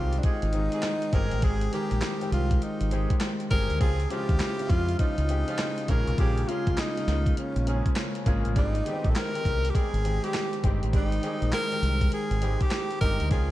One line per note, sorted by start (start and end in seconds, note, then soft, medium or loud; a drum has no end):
0.00 0.19 C2 loud
0.00 0.54 D#3 medium
0.00 0.54 G#3 medium
0.00 0.54 C4 medium
0.00 0.20 F4 medium
0.00 0.51 F4 medium
0.00 3.83 F#4 medium
0.00 1.15 G4 medium
0.13 closed hi-hat medium
0.19 0.26 D4 medium
0.23 0.45 G#3 medium
0.23 0.45 C4 medium
0.23 1.16 D#4 medium
0.23 0.45 G4 medium
0.23 0.45 G#4 medium
0.23 kick loud
0.23 closed hi-hat medium
0.42 0.67 G#1 medium
0.42 closed hi-hat soft
0.53 1.10 D#3 medium
0.53 1.11 G#3 medium
0.53 1.11 C4 medium
0.53 1.11 D#4 medium
0.53 closed hi-hat medium
0.72 0.88 G#3 medium
0.72 0.88 C4 medium
0.72 0.88 G4 medium
0.72 0.88 G#4 medium
0.72 closed hi-hat medium
0.82 snare loud
0.82 clap medium
0.82 closed hi-hat medium
1.02 closed hi-hat soft
1.13 1.29 G1 medium
1.13 1.70 D#3 medium
1.13 1.35 G#3 medium
1.13 1.70 G#3 medium
1.13 1.34 C4 medium
1.13 1.71 C4 medium
1.13 1.34 G4 medium
1.13 1.71 G4 medium
1.13 1.35 G#4 medium
1.13 1.45 A#4 loud
1.13 kick medium
1.13 closed hi-hat medium
1.31 1.41 A1 medium
1.31 closed hi-hat soft
1.42 1.67 G#1 medium
1.42 1.64 G#3 medium
1.42 1.64 C4 medium
1.42 1.64 G4 medium
1.42 1.64 G#4 loud
1.42 1.73 G#4 medium
1.42 kick loud
1.42 closed hi-hat medium
1.61 closed hi-hat medium
1.72 2.18 D#3 medium
1.72 1.94 G#3 medium
1.72 2.18 G#3 medium
1.72 1.94 C4 medium
1.72 2.18 C4 medium
1.72 1.94 G4 medium
1.72 2.29 G4 medium
1.72 1.94 G#4 medium
1.72 2.18 A#4 medium
1.72 closed hi-hat medium
1.91 2.00 A#1 medium
1.91 closed hi-hat soft
2.02 snare loud
2.02 clap loud
2.02 closed hi-hat medium
2.21 2.88 D#3 medium
2.21 2.88 G#3 medium
2.21 2.89 C4 medium
2.21 2.89 G4 medium
2.21 closed hi-hat medium
2.32 2.56 C2 loud
2.32 2.65 F4 medium
2.32 closed hi-hat medium
2.51 kick medium
2.51 closed hi-hat medium
2.62 3.25 D#4 medium
2.62 closed hi-hat medium
2.81 3.05 G#1 medium
2.81 closed hi-hat medium
2.91 3.48 D#3 medium
2.91 3.13 G#3 medium
2.91 3.49 G#3 medium
2.91 3.13 C4 medium
2.91 3.49 C4 medium
2.91 3.13 G4 medium
2.91 3.49 G4 medium
2.91 3.13 G#4 medium
2.91 closed hi-hat medium
3.10 kick medium
3.10 closed hi-hat medium
3.20 snare loud
3.20 clap medium
3.20 closed hi-hat medium
3.40 closed hi-hat soft
3.51 3.66 G1 medium
3.51 3.81 D#3 medium
3.51 3.72 G#3 medium
3.51 3.81 G#3 medium
3.51 3.72 C4 medium
3.51 3.81 C4 medium
3.51 3.72 G4 medium
3.51 3.81 G4 medium
3.51 3.72 G#4 medium
3.51 3.78 A#4 loud
3.51 kick loud
3.51 closed hi-hat medium
3.70 3.79 D2 medium
3.70 closed hi-hat soft
3.81 4.05 C#2 loud
3.81 4.02 F3 medium
3.81 4.02 C4 medium
3.81 4.02 C#4 medium
3.81 4.02 F4 loud
3.81 4.12 G#4 loud
3.81 kick loud
3.81 closed hi-hat medium
4.00 closed hi-hat medium
4.10 4.55 C#3 medium
4.10 4.32 F3 medium
4.10 4.56 G#3 medium
4.10 4.32 C4 medium
4.10 4.56 C4 medium
4.10 4.32 C#4 medium
4.10 4.19 E4 medium
4.10 4.32 F4 medium
4.10 4.72 G4 loud
4.10 closed hi-hat medium
4.18 4.59 F4 medium
4.29 4.38 D#2 medium
4.29 kick loud
4.29 closed hi-hat soft
4.40 snare loud
4.40 clap loud
4.40 closed hi-hat medium
4.59 5.26 C#3 medium
4.59 5.26 G#3 medium
4.59 5.26 C4 medium
4.59 4.64 E4 medium
4.59 closed hi-hat medium
4.67 4.94 F2 loud
4.67 5.30 F4 medium
4.67 4.99 F4 loud
4.67 kick medium
4.67 closed hi-hat medium
4.89 closed hi-hat medium
4.99 5.21 F3 medium
4.99 5.21 C4 medium
4.99 5.21 C#4 medium
4.99 5.91 D#4 medium
4.99 5.21 F4 medium
4.99 muted fingered electric bass stroke soft
4.99 kick loud
4.99 closed hi-hat medium
5.18 5.43 C#2 medium
5.18 closed hi-hat medium
5.29 5.86 C#3 medium
5.29 5.86 G#3 medium
5.29 5.86 C4 medium
5.29 5.87 G4 medium
5.29 closed hi-hat medium
5.47 5.63 F3 medium
5.47 5.63 C4 medium
5.47 5.63 C#4 medium
5.47 5.63 F4 medium
5.47 closed hi-hat soft
5.58 snare loud
5.58 clap medium
5.58 closed hi-hat medium
5.78 closed hi-hat soft
5.88 6.04 A#1 loud
5.88 6.45 C#3 medium
5.88 6.45 G#3 medium
5.88 6.10 G#3 medium
5.88 6.10 A#3 medium
5.88 6.46 A#3 medium
5.88 6.10 C#4 medium
5.88 6.46 F4 medium
5.88 6.10 G#4 medium
5.88 6.19 A#4 loud
5.88 kick medium
5.88 closed hi-hat medium
6.07 6.16 B1 medium
6.07 closed hi-hat soft
6.18 6.43 A#1 medium
6.18 6.40 G#3 medium
6.18 6.40 A#3 medium
6.18 6.40 C#4 medium
6.18 6.50 G4 medium
6.18 6.40 G#4 loud
6.18 kick loud
6.18 closed hi-hat medium
6.37 closed hi-hat medium
6.48 6.93 C#3 medium
6.48 6.93 G#3 medium
6.48 6.70 G#3 medium
6.48 6.69 A#3 medium
6.48 6.93 A#3 medium
6.48 6.70 C#4 medium
6.48 6.80 F4 medium
6.48 6.94 F4 medium
6.48 6.70 G#4 medium
6.48 closed hi-hat medium
6.67 6.76 C2 medium
6.67 kick loud
6.67 closed hi-hat soft
6.78 7.38 D#4 loud
6.78 snare loud
6.78 clap loud
6.78 closed hi-hat medium
6.97 7.63 C#3 medium
6.97 7.64 G#3 medium
6.97 7.64 A#3 medium
6.97 7.64 F4 medium
6.97 closed hi-hat medium
7.07 7.32 C#2 loud
7.07 snare medium
7.07 closed hi-hat medium
7.26 kick medium
7.26 closed hi-hat medium
7.37 7.93 C#4 medium
7.37 muted fingered electric bass stroke soft
7.37 closed hi-hat medium
7.56 7.80 A#1 medium
7.56 closed hi-hat soft
7.67 8.23 C#3 medium
7.67 8.24 G#3 medium
7.67 7.88 G#3 medium
7.67 7.88 A#3 medium
7.67 8.24 A#3 medium
7.67 7.76 C4 medium
7.67 7.88 C#4 medium
7.67 7.88 G#4 medium
7.67 closed hi-hat medium
7.74 8.27 C#4 medium
7.86 kick medium
7.86 closed hi-hat medium
7.96 snare loud
7.96 clap medium
7.96 closed hi-hat medium
8.15 closed hi-hat soft
8.26 8.42 G#1 medium
8.26 8.56 C#3 medium
8.26 8.48 G#3 medium
8.26 8.56 G#3 medium
8.26 8.47 A#3 medium
8.26 8.56 A#3 medium
8.26 8.48 C#4 medium
8.26 8.56 F4 medium
8.26 8.48 G#4 medium
8.26 kick medium
8.26 closed hi-hat medium
8.45 8.54 A1 medium
8.45 closed hi-hat soft
8.55 8.80 G#1 medium
8.55 8.77 G3 medium
8.55 8.77 G#3 medium
8.55 8.77 C4 medium
8.55 9.12 D#4 medium
8.55 8.77 G4 medium
8.55 kick loud
8.55 closed hi-hat medium
8.75 closed hi-hat medium
8.85 9.31 D#3 medium
8.85 9.07 G3 medium
8.85 9.07 G#3 medium
8.85 9.31 G#3 medium
8.85 8.94 B3 medium
8.85 9.07 C4 medium
8.85 9.07 G4 medium
8.85 9.31 G4 medium
8.85 closed hi-hat medium
8.93 9.33 C4 medium
9.04 9.13 A#1 medium
9.04 kick medium
9.04 closed hi-hat soft
9.10 9.18 A4 medium
9.16 9.71 A#4 loud
9.16 snare loud
9.16 clap loud
9.16 closed hi-hat medium
9.34 10.01 D#3 medium
9.34 10.01 G#3 medium
9.34 10.01 C4 medium
9.34 10.02 G4 medium
9.34 closed hi-hat medium
9.45 9.70 C2 loud
9.45 kick medium
9.45 closed hi-hat medium
9.65 closed hi-hat medium
9.70 9.76 G4 medium
9.74 9.96 G3 medium
9.74 9.96 G#3 medium
9.74 9.96 C4 medium
9.74 9.96 G4 medium
9.74 10.25 G#4 loud
9.74 kick loud
9.74 closed hi-hat medium
9.93 10.18 G#1 medium
9.93 closed hi-hat medium
10.04 10.61 D#3 medium
10.04 10.61 G#3 medium
10.04 10.61 C4 medium
10.04 10.62 G4 medium
10.04 closed hi-hat medium
10.23 10.38 G3 medium
10.23 10.38 G#3 medium
10.23 10.38 C4 medium
10.23 10.64 G4 medium
10.23 10.38 G4 medium
10.23 closed hi-hat medium
10.34 snare loud
10.34 clap medium
10.34 closed hi-hat medium
10.53 closed hi-hat soft
10.63 10.79 G1 medium
10.63 11.20 D#3 medium
10.63 10.85 G3 medium
10.63 11.20 G#3 medium
10.63 10.85 G#3 medium
10.63 10.85 C4 medium
10.63 11.20 C4 medium
10.63 10.85 G4 medium
10.63 11.21 G4 medium
10.63 kick medium
10.63 closed hi-hat medium
10.82 10.91 A1 medium
10.82 closed hi-hat soft
10.93 11.18 G#1 medium
10.93 11.15 G3 medium
10.93 11.14 G#3 medium
10.93 11.15 C4 medium
10.93 11.50 D#4 medium
10.93 11.15 G4 medium
10.93 kick loud
10.93 closed hi-hat medium
11.12 closed hi-hat soft
11.23 11.68 D#3 medium
11.23 11.45 G3 medium
11.23 11.44 G#3 medium
11.23 11.68 G#3 medium
11.23 11.44 C4 medium
11.23 11.68 C4 medium
11.23 11.45 G4 medium
11.23 11.69 G#4 medium
11.23 closed hi-hat medium
11.42 11.51 A#1 medium
11.42 closed hi-hat soft
11.52 12.09 A#4 loud
11.52 snare loud
11.52 clap loud
11.52 closed hi-hat medium
11.72 12.39 D#3 medium
11.72 12.39 G#3 medium
11.72 12.39 C4 medium
11.72 12.39 G4 medium
11.72 closed hi-hat medium
11.82 12.07 C2 loud
11.82 closed hi-hat medium
12.01 kick medium
12.01 closed hi-hat medium
12.12 12.63 G#4 loud
12.12 closed hi-hat medium
12.31 12.55 G#1 medium
12.31 closed hi-hat soft
12.41 12.99 D#3 medium
12.41 12.63 G3 medium
12.41 12.63 G#3 medium
12.41 12.99 G#3 medium
12.41 12.63 C4 medium
12.41 12.99 C4 medium
12.41 12.63 G4 medium
12.41 12.99 G4 medium
12.41 closed hi-hat medium
12.61 13.00 G4 loud
12.61 kick medium
12.61 closed hi-hat medium
12.71 snare loud
12.71 clap medium
12.71 closed hi-hat medium
12.91 closed hi-hat soft
13.01 13.17 G1 medium
13.01 13.31 D#3 medium
13.01 13.23 G3 medium
13.01 13.22 G#3 medium
13.01 13.31 G#3 medium
13.01 13.23 C4 medium
13.01 13.31 C4 medium
13.01 13.32 D#4 medium
13.01 13.23 G4 medium
13.01 13.29 A#4 loud
13.01 kick medium
13.01 closed hi-hat medium
13.20 13.29 D2 medium
13.20 closed hi-hat soft
13.31 13.51 C#2 medium
13.31 13.51 F3 medium
13.31 13.51 C4 medium
13.31 13.51 C#4 medium
13.31 13.51 F4 medium
13.31 13.51 G#4 medium
13.31 kick loud
13.31 closed hi-hat medium